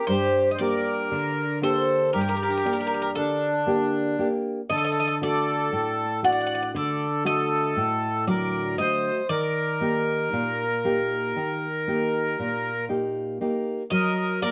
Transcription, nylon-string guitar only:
0.08 G2
0.60 A#3 D4 G4
1.12 D3
1.62 A#3 D4 G4
2.15 G2
2.65 A#3 D4 G4
3.17 D3
3.67 A#3 D4 G4
4.19 A#3 D4 G4
4.70 D3
5.21 A3 D4 F#4
5.73 A2
6.23 A3 D4 F#4
6.75 D3
7.25 A3 F#4
7.77 A2
8.27 D3 F#3 F#4
8.79 A3 F#4
9.29 D#3
9.81 A#3 D#4 G4
10.33 A#2
10.85 A#3 D#4 G4
11.36 D#3
11.88 A#3 D#4 G4
12.39 A#2
12.89 A#3 D#4 G4
13.41 A#3 D#4 G4
13.91 F#3
14.42 A#3 F#4 A#4

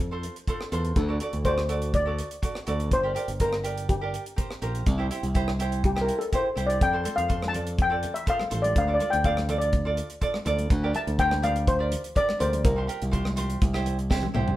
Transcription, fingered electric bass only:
Already playing: F2
0.72 E2
0.96 D2
1.33 D2
2.68 D2
2.92 G1
3.28 G1
4.62 A#1
4.87 C2
5.23 C2
6.56 C2
6.81 F2
7.18 F2
8.52 A1
8.76 D2
9.13 D2
10.46 D2
10.71 D2
11.07 D2
12.41 D2
12.65 C2
13.02 C2
13.62 C2
14.36 C2

